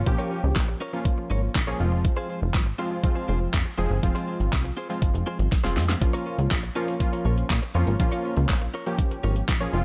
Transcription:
0.06 A#1 F3 A#3 C#4 G4, muted clean electric guitar stroke, kick
0.18 C#4 F4 A#4 C#5
0.31 C#4 F4 A#4 C#5
0.44 C#2, muted clean electric guitar stroke
0.56 A#1, muted clean electric guitar stroke, kick, snare, clap
0.68 muted clean electric guitar stroke
0.80 C#4 F4 A#4 C#5
0.93 F3 A#3 C#4 F4 A#4 C#5
1.05 muted clean electric guitar stroke, kick
1.18 muted clean electric guitar stroke
1.30 G#1 C#4 F4 A#4 C#5
1.43 muted clean electric guitar stroke
1.55 A#1, muted clean electric guitar stroke, kick, snare, clap
1.67 F3 A#3 C#4 F4 G#4 A#4 C#5
1.80 F1 F3 G#3 C4 F4
1.92 muted clean electric guitar stroke
2.04 muted clean electric guitar stroke, kick
2.17 C4 F4 G#4 C5
2.29 C4 F4 G#4 C5
2.41 F1, muted clean electric guitar stroke
2.54 G#1, muted clean electric guitar stroke, kick, snare, clap
2.66 muted clean electric guitar stroke
2.78 F3 G#3 C4 F4 G#4 C5
2.91 C4 F4 G#4 C5
3.03 F3 G#3 C4 F4, muted clean electric guitar stroke, kick
3.15 C4 F4 G#4 C5
3.28 F1 C4 F4 G#4 C5
3.41 muted clean electric guitar stroke
3.54 F2, kick, snare, clap
3.65 muted clean electric guitar stroke
3.78 F1 F3 G#3 C4 F4 G#4 C5
3.90 G1 C4 F4 G#4 C5
4.03 F1 F3 G#3 C4 F4, muted clean electric guitar stroke, kick, closed hi-hat
4.15 C4 F4 G#4 C5, closed hi-hat
4.27 C4 F4 G#4 C5
4.40 G#1, muted clean electric guitar stroke, closed hi-hat
4.52 C2, muted clean electric guitar stroke, kick, snare, clap, closed hi-hat
4.64 muted clean electric guitar stroke, closed hi-hat
4.77 C4 F4 G#4 C5
4.89 F3 G#3 C4 F4 G#4 C5, closed hi-hat
5.02 G#1, muted clean electric guitar stroke, kick, closed hi-hat
5.14 F1, muted clean electric guitar stroke, closed hi-hat
5.26 C4 F4 G#4 C5
5.39 G#1, muted clean electric guitar stroke, closed hi-hat
5.51 muted clean electric guitar stroke, kick, snare, closed hi-hat
5.64 F1 F3 G#3 C4 F4 G#4 C5, snare, closed hi-hat
5.76 F2, snare
5.88 muted clean electric guitar stroke, snare, closed hi-hat
6.01 A#1 F3 A#3 C#4 F4, muted clean electric guitar stroke, kick, closed hi-hat
6.13 C#4 F4 A#4 C#5, closed hi-hat
6.26 C#4 F4 A#4 C#5
6.38 C#2, muted clean electric guitar stroke, closed hi-hat
6.51 A#1, muted clean electric guitar stroke, kick, snare, clap, closed hi-hat
6.63 muted clean electric guitar stroke, closed hi-hat
6.75 F3 A#3 C#4 F4 A#4 C#5
6.88 C#4 F4 A#4 C#5, closed hi-hat
7.00 F3 A#3 C#4 F4, muted clean electric guitar stroke, kick, closed hi-hat
7.13 C#4 F4 A#4 C#5, closed hi-hat
7.25 A#1 C#4 F4 A#4 C#5
7.37 muted clean electric guitar stroke, closed hi-hat
7.50 A#2, muted clean electric guitar stroke, kick, snare, clap, closed hi-hat
7.62 muted clean electric guitar stroke, closed hi-hat
7.75 F2 F3 A#3 C#4 F4 A#4 C#5
7.87 G#1 C#4 F4 A#4 C#5, closed hi-hat
7.99 A#1 F3 A#3 C#4 F4, kick, closed hi-hat
8.12 C#4 F4 A#4 C#5, closed hi-hat
8.24 C#4 F4 A#4 C#5
8.37 C#2, closed hi-hat
8.49 A#1, muted clean electric guitar stroke, kick, snare, clap, closed hi-hat
8.61 muted clean electric guitar stroke, closed hi-hat
8.74 C#4 F4 A#4 C#5
8.86 F3 A#3 C#4 F4 G4 A#4 C#5, closed hi-hat
8.99 kick, closed hi-hat
9.11 muted clean electric guitar stroke, closed hi-hat
9.23 G#1 C#4 F4 A#4 C#5
9.36 muted clean electric guitar stroke, closed hi-hat
9.49 A#1, muted clean electric guitar stroke, kick, snare, clap, closed hi-hat
9.61 F3 A#3 C#4 F4 G#4 A#4 C#5, closed hi-hat
9.73 F1 F3 G#3 C4 F4

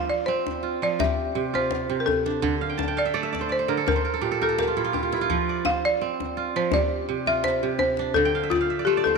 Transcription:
Already playing: F3 D4 F4 G4 C5 D5 F5
0.10 D5
0.26 C4 C5
0.47 djembe slap, djembe tone
0.63 F4
0.82 F3 D5, djembe slap
0.99 G4 E5, djembe slap, djembe tone, djembe bass
1.35 C3
1.54 F4 C5, djembe tone
1.71 djembe slap
1.90 C3
2.00 A#4
2.06 A4, djembe slap, djembe tone
2.26 D4, djembe slap
2.42 D3, djembe slap, djembe bass
2.61 F5
2.70 G5
2.78 A5, djembe slap, djembe tone
2.88 G5
2.97 D5 F5
3.05 E5
3.14 A3 D5
3.23 E5
3.33 D5, djembe slap, djembe tone
3.41 C5
3.49 C5 D5
3.59 C5
3.68 D3 A#4
3.77 A4
3.86 A#4, djembe slap, djembe tone, djembe bass
3.96 C5
4.05 A#4
4.14 A4
4.21 A#2 G4
4.32 A4
4.41 A4 A#4, djembe tone
4.49 A4
4.58 G4 A#4, djembe slap
4.68 F4
4.77 A#2 E4
4.84 F4
4.93 G4, djembe slap, djembe tone
5.03 F4
5.12 E4, djembe slap
5.21 F4
5.30 F3, djembe slap, djembe bass
5.49 D5
5.65 C5 F5, djembe slap, djembe tone
5.85 D5
6.01 C4
6.20 djembe slap, djembe tone
6.37 F4
6.56 F3 C5
6.72 G4 D5, djembe slap, djembe tone, djembe bass
7.09 C3
7.26 F4 E5, djembe tone
7.44 C5, djembe slap
7.63 C3
7.79 C5, djembe slap, djembe tone
7.97 D4, djembe slap
8.14 D3 A4, djembe bass
8.25 G5
8.34 F5, djembe slap
8.43 E5
8.50 F4 D5, djembe slap, djembe tone
8.61 F5
8.70 E5, djembe slap
8.79 D5
8.85 A3 G4 C5, djembe slap
8.97 D5
9.04 A4 C5, djembe slap, djembe tone

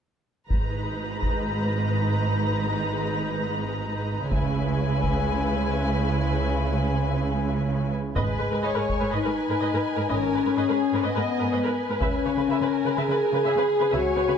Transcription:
0.50 G#1 G#2 G#3 D#4 B4 A#5, taiko
1.22 taiko
4.31 C#2 C#3 G#3 E4 B4 G#5, taiko
5.03 taiko
8.16 G#1 G#2 G#3 B4 D#5 G#5, taiko
8.39 G#2 B4
8.52 G#2 A#4 B4
8.62 G#2 B4 C#5 D#5
8.74 G#2 A#4 B4
8.89 taiko
8.99 G#2 A#4 B4
9.11 G#2 D#4 B4 D#5
9.24 G#2 A#4 B4
9.48 G#2 A#4 B4
9.60 G#2 B4 D#5
9.73 G#2 A#4 B4
9.96 G#2 A#4 B4
10.09 G#1 G#2 C#4 A#4 B4 D#5
10.33 G#2 B4
10.45 G#2 A#4 B4
10.56 G#2 G#4 B4 D#5
10.68 G#2 A#4 B4
10.93 G#2 A#4 B4
11.03 G#2 B3 B4 D#5
11.15 G#2 A#4 B4
11.39 G#2 A#4 B4
11.52 G#2 B4 D#5
11.65 G#2 A#4 B4
11.89 G#2 A#4 B4
12.00 C#2 C#3 C#4 B4 E5 G#5, taiko
12.24 C#3 B4 C#5
12.36 C#3 B4
12.47 C#3 A#4 B4 E5
12.60 C#3 B4
12.85 C#3 B4
12.97 C#3 G#4 B4 E5
13.08 C#3 B4
13.33 C#3 B4
13.44 C#3 G#4 B4 E5
13.56 C#3 B4
13.80 C#3 B4
13.91 C#2 C#3 F#4 B4 C#5 E5
14.16 C#3 B4 C#5
14.27 C#3 B4

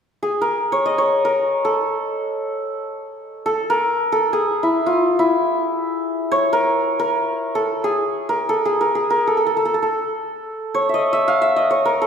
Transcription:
0.23 G#4
0.41 A#4
0.72 C#5
0.86 D#5
0.98 C#5
1.25 A#4
1.65 A4
3.46 A4
3.70 A#4
4.12 A4
4.33 G#4
4.63 E4
4.86 F4
5.19 E4
6.32 C#5
6.53 A#4
6.99 A#4
7.55 A4
7.84 G#4
8.29 A#4
8.49 A4
8.65 G#4
8.81 A#4
8.95 G#4
9.10 A#4
9.27 A4
9.37 A4
9.47 A4
9.57 A4
9.65 A4
9.74 A4
9.82 A4
10.74 C#5
10.89 E5
10.94 D#5
11.13 E5
11.28 F5
11.42 E5
11.56 D#5
11.71 C#5
11.85 A#4
12.02 A4

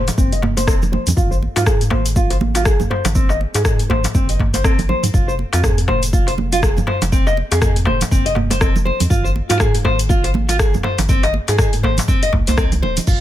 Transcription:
Already playing: F1
0.08 closed hi-hat, darbuka ka, low conga, cabasa
0.18 F1 C4, kick, mid tom, muted conga, high conga, cabasa
0.32 D#5, closed hi-hat, cabasa
0.42 mid tom, darbuka tek, high conga
0.57 C5, closed hi-hat, darbuka ka, muted conga, high conga, cabasa
0.67 C4, kick, cross-stick, cabasa
0.82 high conga, low conga, cabasa
0.92 C5, muted conga, high conga, low conga
1.07 F2, closed hi-hat, low conga, cabasa
1.17 G#1 F4, kick, mid tom, cabasa
1.31 C5, cabasa
1.43 muted conga
1.56 G#2 F4, closed hi-hat, darbuka tek, cabasa
1.66 G#4, kick, cross-stick, darbuka dum, cabasa
1.81 closed hi-hat, muted conga, cabasa
1.90 G#1 C5, darbuka tek, high conga, darbuka dum
2.06 closed hi-hat, cabasa
2.16 F4, kick, muted conga, high conga, cabasa
2.30 C5, closed hi-hat, darbuka ka, cabasa
2.41 high conga, low conga
2.55 F4, closed hi-hat, muted conga, darbuka tek, cabasa
2.65 G#4, kick, cross-stick, cabasa
2.80 mid tom, high conga, low conga, cabasa
2.90 C5, mid tom, muted conga, darbuka ka
3.05 G#1, closed hi-hat, darbuka ka, low conga, cabasa
3.15 C4, kick, cabasa
3.29 D#5, darbuka ka, cabasa
3.41 muted conga
3.54 G#2 G#4, closed hi-hat, darbuka tek, cabasa
3.65 kick, cross-stick, darbuka dum, cabasa
3.79 closed hi-hat, muted conga, cabasa
3.89 G#1 C5, high conga, darbuka tek, darbuka dum
4.04 closed hi-hat, darbuka ka, low conga, cabasa
4.14 G#1 C4, kick, mid tom, muted conga, high conga, cabasa
4.29 D#5, closed hi-hat, cabasa
4.39 kick, mid tom, high conga, darbuka tek
4.54 C5, closed hi-hat, muted conga, darbuka ka, high conga, cabasa
4.64 C4, kick, cross-stick, cabasa
4.79 closed hi-hat, high conga, low conga, cabasa
4.89 C5, muted conga, high conga, low conga
5.03 G#2, closed hi-hat, low conga, cabasa
5.14 F1 F4, kick, mid tom, cabasa
5.28 C5, cabasa
5.39 muted conga
5.53 F2 F4, closed hi-hat, darbuka tek, cabasa
5.63 G#4, kick, cross-stick, darbuka dum, cabasa
5.78 closed hi-hat, muted conga, cabasa
5.88 F1 C5, darbuka tek, high conga, darbuka dum
6.03 closed hi-hat, cabasa
6.13 F4, kick, muted conga, high conga, cabasa
6.27 C5, closed hi-hat, darbuka ka, cabasa
6.38 high conga, low conga
6.52 F4, closed hi-hat, muted conga, cabasa
6.63 G#4, kick, cross-stick, cabasa
6.77 mid tom, high conga, low conga, cabasa
6.87 C5, mid tom, darbuka ka, muted conga, darbuka tek
7.02 F1, closed hi-hat, darbuka ka, low conga, cabasa
7.12 C4, kick, cabasa
7.27 D#5, darbuka ka, cabasa
7.37 muted conga
7.51 F2 G#4, closed hi-hat, darbuka tek, cabasa
7.62 G#4, kick, cross-stick, darbuka dum, cabasa
7.76 closed hi-hat, muted conga, cabasa
7.85 F1 C5, darbuka tek, high conga, darbuka dum
8.01 closed hi-hat, darbuka ka, low conga, cabasa
8.11 F1 C4, kick, mid tom, muted conga, high conga, cabasa
8.26 D#5, closed hi-hat, cabasa
8.35 mid tom, darbuka tek, high conga
8.50 C5, closed hi-hat, darbuka ka, muted conga, high conga, cabasa
8.61 C4, kick, cross-stick, cabasa
8.76 high conga, low conga, cabasa
8.85 C5, muted conga, high conga, low conga
9.00 F2, closed hi-hat, low conga, cabasa
9.10 G#1 F4, kick, mid tom, cabasa
9.24 C5, cabasa
9.36 muted conga
9.49 G#2 F4, closed hi-hat, darbuka tek, cabasa
9.60 G#4, kick, cross-stick, darbuka dum, cabasa
9.75 closed hi-hat, muted conga, cabasa
9.84 G#1 C5, high conga, darbuka tek, darbuka dum
9.99 closed hi-hat, cabasa
10.09 F4, kick, muted conga, high conga, cabasa
10.24 C5, closed hi-hat, darbuka ka, cabasa
10.34 high conga, low conga
10.49 F4, closed hi-hat, muted conga, darbuka tek, cabasa
10.59 G#4, kick, cross-stick, cabasa
10.74 mid tom, high conga, low conga, cabasa
10.83 C5, mid tom, darbuka ka, muted conga
10.98 G#1, closed hi-hat, darbuka ka, low conga, cabasa
11.09 C4, kick, mid tom, cabasa
11.23 D#5, closed hi-hat, darbuka ka, cabasa
11.34 muted conga
11.48 G#2 G#4, closed hi-hat, darbuka tek, cabasa
11.58 G#4, kick, cross-stick, darbuka dum, cabasa
11.73 closed hi-hat, muted conga, cabasa
11.83 G#1 C5, high conga, darbuka tek, darbuka dum
11.98 closed hi-hat, darbuka ka, low conga, cabasa
12.08 C4, kick, mid tom, muted conga, high conga, cabasa
12.23 D#5, closed hi-hat, cabasa
12.33 C2, kick, mid tom, darbuka ka, high conga, darbuka tek
12.47 C2 C5, closed hi-hat, muted conga, darbuka ka, high conga, cabasa
12.58 C4, kick, cross-stick, cabasa
12.72 closed hi-hat, high conga, low conga, cabasa
12.82 D#1 C5, muted conga, high conga, low conga
12.97 closed hi-hat, low conga, cabasa
13.07 F1 F4, kick, mid tom, crash, cabasa

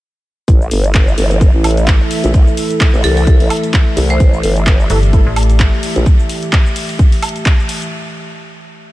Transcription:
0.48 A1 E3 A3 E4 A4 E5, kick, closed hi-hat, shaker
0.61 A4, shaker
0.71 G1, open hi-hat, shaker
0.84 closed hi-hat, shaker
0.91 E5, kick, closed hi-hat
0.95 clap, shaker
1.08 shaker
1.18 G1, open hi-hat, shaker
1.31 closed hi-hat, shaker
1.41 kick, closed hi-hat, shaker
1.54 A1
1.64 open hi-hat, high woodblock, shaker
1.71 closed hi-hat
1.77 closed hi-hat, shaker
1.88 kick, clap, closed hi-hat, shaker
2.11 open hi-hat, shaker
2.24 A#1, closed hi-hat, shaker
2.34 kick, closed hi-hat, shaker
2.48 shaker
2.57 open hi-hat, shaker
2.70 closed hi-hat, shaker
2.81 kick, clap, closed hi-hat, shaker
2.94 A1, shaker
3.04 C2 A4, open hi-hat, shaker
3.17 A4, open hi-hat, shaker
3.27 kick, closed hi-hat, shaker
3.40 A1, open hi-hat
3.50 open hi-hat, high woodblock, shaker
3.57 closed hi-hat
3.64 closed hi-hat, shaker
3.74 D5, kick, clap, closed hi-hat, shaker
3.97 C2, open hi-hat, shaker
4.10 C5, closed hi-hat, shaker
4.20 A1 G4, kick, closed hi-hat, shaker
4.34 shaker
4.43 G1, open hi-hat, shaker
4.57 closed hi-hat, shaker
4.67 kick, clap, closed hi-hat, shaker
4.80 shaker
4.90 G1 E3 A3 E4 A4, open hi-hat, shaker
5.03 closed hi-hat, shaker
5.13 E3 A3 E4 A4, kick, closed hi-hat, shaker
5.26 A1
5.36 open hi-hat, high woodblock, shaker
5.43 closed hi-hat
5.50 closed hi-hat, shaker
5.60 kick, clap, closed hi-hat, shaker
5.83 open hi-hat, shaker
5.96 A#1, closed hi-hat, shaker
6.06 kick, closed hi-hat, shaker
6.20 shaker
6.29 open hi-hat, shaker
6.43 closed hi-hat, shaker
6.53 kick, clap, closed hi-hat, shaker
6.66 shaker
6.76 open hi-hat, shaker
6.89 open hi-hat, shaker
6.99 kick, closed hi-hat, shaker
7.12 open hi-hat, shaker
7.22 open hi-hat, high woodblock, shaker
7.29 closed hi-hat
7.36 closed hi-hat, shaker
7.46 kick, clap, closed hi-hat, shaker
7.59 shaker
7.69 open hi-hat, shaker
7.82 closed hi-hat, shaker

